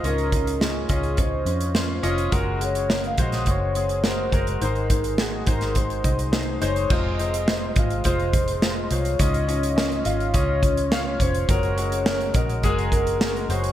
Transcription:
<<
  \new Staff \with { instrumentName = "Soft synth lead" } { \time 4/4 \key des \major \tempo 4 = 105 bes'4 aes'4 c''4. r8 | r8 des''8. f''16 ees''8 des''4 c''4 | bes'4 aes'8 bes'8 r4. des''8 | ees''4. f''8 c''4. des''8 |
ees''4. f''8 des''4. c''8 | des''4. ees''8 bes'4. des''8 | }
  \new Staff \with { instrumentName = "Grand piano" } { \time 4/4 \key des \major <des' f' ees''>8 <des' f' ees''>8 <des' f' ees''>8 <des' f' ees''>8 <des' f' ees''>8 <des' f' ees''>8 <des' f' c''>8 <des' f' ees''>8 | <aes ges' bes'>8 <aes ges' bes'>8 <aes ges' bes'>8 <aes ges' c''>8 <aes ges' c''>8 <aes ges' aes'>8 <aes ges' bes'>8 <aes ges' bes'>8 | <aes ees' c''>8 <aes ees' c''>8 <aes ees' ges'>8 <aes ees' c''>8 <aes ees' c''>8 <aes ees' ees''>8 <aes ees' c''>8 <aes ees' c''>8 | <aes f' c''>8 <aes f' c''>8 <aes f' c''>8 <aes f' ees''>8 <aes f' c''>8 <aes f' c''>8 <aes f' ees''>8 <aes f' c''>8 |
<des' f' ees''>8 <des' f' ees''>8 <des' f' ees''>8 <des' f' ees''>8 <des' f' ees''>8 <des' f' ees''>8 <des' f' f''>8 <des' f' des''>8 | <aes ges' bes'>8 <aes ges' bes'>8 <aes ges' bes'>8 <aes ges' bes'>8 <aes ges' aes'>8 <aes ges' bes'>8 <aes ges' bes'>8 <aes ges' c''>8 | }
  \new Staff \with { instrumentName = "Grand piano" } { \clef bass \time 4/4 \key des \major aes,4. r2 r8 | des4. r2 r8 | <aes, ees>4. r2 r8 | c4. r2 r8 |
aes,4. r2 r8 | des4. r2 r8 | }
  \new Staff \with { instrumentName = "Fingered electric bass" } { \clef bass \time 4/4 \key des \major des,4. des,4 f,4 f,,8 | ges,,4. bes,,8 ges,,4. ges,,8 | aes,,4. aes,,4 c,4 ges,,8 | f,,4. aes,,8 f,,4. c,8 |
des,4. aes,,8 des,4. f,,8 | ges,,4. bes,,8 ges,,4. ges,,8 | }
  \new DrumStaff \with { instrumentName = "Drums" } \drummode { \time 4/4 hh16 hh16 <hh bd>16 hh16 sn8 <hh bd>16 hh16 <hh bd>8 hh16 hh16 sn8 hh16 hh16 | <hh bd>8 hh16 hh16 sn16 hh16 <hh bd>16 <hh sn>16 <hh bd>8 hh16 hh16 sn8 <hh bd>16 hh16 | hh16 hh16 <hh bd>16 hh16 sn8 <hh bd>16 <hh sn>16 <hh bd>16 hh16 <hh bd>16 hh16 sn8 hh16 hh16 | <cymc bd>8 hh16 hh16 sn8 <hh bd>16 hh16 <hh bd>16 hh16 <hh bd>16 hh16 sn8 hh16 hh16 |
<hh bd>16 hh16 hh16 hh16 sn16 hh16 hh16 hh16 <hh bd>8 <hh bd>16 hh16 sn8 <hh bd>16 hh16 | <hh bd>16 hh16 hh16 hh16 sn16 hh16 <hh bd>16 hh16 <hh bd>16 hh16 <hh bd>16 hh16 sn16 hh16 hh16 hh16 | }
>>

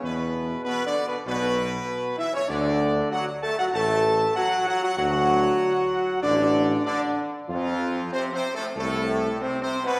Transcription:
<<
  \new Staff \with { instrumentName = "Trumpet section" } { \time 4/4 \key d \lydian \tempo 4 = 96 b'4 \tuplet 3/2 { b'8 d''8 b'8 } b'4. e''16 cis''16 | d''4 fis''8 a''16 fis''16 a''4 fis''8 fis''16 fis''16 | fis''2 d''4 d''8 r8 | f'4 \tuplet 3/2 { c''8 c''8 a'8 } a'4 \tuplet 3/2 { c''8 c''8 b'8 } | }
  \new Staff \with { instrumentName = "French horn section" } { \time 4/4 \key d \lydian b4 \tuplet 3/2 { b8 d'8 b8 } b4. e'16 cis'16 | d'4 fis'8 a'16 fis'16 a'4 fis'8 fis'16 fis'16 | fis'2 d'4 d'8 r8 | f4 \tuplet 3/2 { c'8 c'8 a8 } a4 \tuplet 3/2 { c'8 c'8 b8 } | }
  \new Staff \with { instrumentName = "Trombone section" } { \clef bass \time 4/4 \key d \lydian b,4 \tuplet 3/2 { b,8 d8 b,8 } b,4. e16 cis16 | d4 fis8 a16 fis16 a4 fis8 fis16 fis16 | fis2 d4 d8 r8 | f,4 \tuplet 3/2 { c8 c8 a,8 } a,4 \tuplet 3/2 { c8 c8 b,8 } | }
  \new Staff \with { instrumentName = "Tuba" } { \clef bass \time 4/4 \key d \lydian e,4 r4 b,,4 r4 | d,4 r4 a,,4 r4 | d,4 r4 a,,4 r4 | f,4 r4 c,4 r4 | }
>>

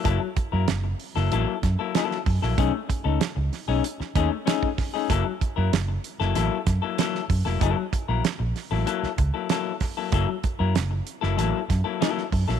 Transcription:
<<
  \new Staff \with { instrumentName = "Clean electric guitar" } { \time 4/4 \key b \major \tempo 4 = 95 <fis ais e' a'>16 r8 <fis ais e' ais'>16 r8. <fis ais e' a'>16 <fis ais e' a'>16 r8 <fis ais e' a'>16 <fis ais e' a'>16 r8 <fis ais e' a'>16 | <a cis' dis' gis'>16 r8 <a cis' dis' a'>16 r8. <a cis' dis' gis'>16 r8 <a cis' dis' gis'>16 r16 <a cis' dis' gis'>16 r8 <a cis' dis' gis'>16 | <fis ais e' a'>16 r8 <fis ais e' ais'>16 r8. <fis ais e' a'>16 <fis ais e' a'>16 r8 <fis ais e' a'>16 <fis ais e' a'>16 r8 <fis ais e' a'>16 | <fis ais e' a'>16 r8 <fis ais e' ais'>16 r8. <fis ais e' a'>16 <fis ais e' a'>16 r8 <fis ais e' a'>16 <fis ais e' a'>16 r8 <fis ais e' a'>16 |
<fis ais e' a'>16 r8 <fis ais e' ais'>16 r8. <fis ais e' a'>16 <fis ais e' a'>16 r8 <fis ais e' a'>16 <fis ais e' a'>16 r8 <fis ais e' a'>16 | }
  \new Staff \with { instrumentName = "Fingered electric bass" } { \clef bass \time 4/4 \key b \major fis,,16 r8 fis,16 fis,,8 r16 fis,,16 a,,16 r16 fis,16 r8. fis,16 ais,,16 | b,,16 r8 cis,16 r16 cis,16 r16 b,,16 r8 dis,16 r4 r16 | fis,,16 r8 fis,16 fis,,8 r16 fis,,16 a,,16 r16 fis,16 r8. fis,16 eis,,16 | fis,,16 r8 ais,,16 r16 ais,,16 r16 a,,16 r8 cis,16 r4 r16 |
fis,,16 r8 fis,16 fis,,8 r16 fis,,16 a,,16 r16 fis,16 r8. fis,16 ais,,16 | }
  \new DrumStaff \with { instrumentName = "Drums" } \drummode { \time 4/4 <hh bd>8 <hh bd>8 <hh sn>8 hho16 sn16 hh8 <hh bd sn>8 <hh sn>16 sn16 <hho bd>16 sn16 | <hh bd>8 <hh bd>8 <hh sn>8 <hho sn>8 hh16 sn16 <hh bd>8 <hh sn>16 bd16 <hho bd sn>8 | <hh bd>8 <hh bd>8 <hh sn>8 hh16 sn16 hh8 <hh bd sn>8 <hh sn>16 sn16 <hho bd>16 sn16 | <hh bd>8 <hh bd>8 <hh sn>8 <hho sn>8 hh16 sn16 <hh bd>8 <hh sn>8 <hho bd sn>8 |
<hh bd>8 <hh bd>8 <hh sn>8 hh16 sn16 hh8 <hh bd sn>8 <hh sn>16 sn16 <hho bd>16 sn16 | }
>>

